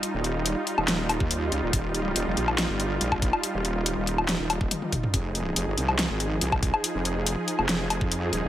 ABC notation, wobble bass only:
X:1
M:4/4
L:1/16
Q:1/4=141
K:Ebmix
V:1 name="Wobble bass" clef=bass
z E,,,4 z2 E,,,4 E,,3 D,, E,,, | E,,,4 E,,, F,,, B,,,3 G,,,3 B,,,3 z | z E,,,4 E,,,4 E,,,3 z4 | F,,,4 F,,, G,,, C,,3 A,,,3 C,,3 z |
z F,,,4 z2 F,,,4 F,,3 E,,, F,,, |]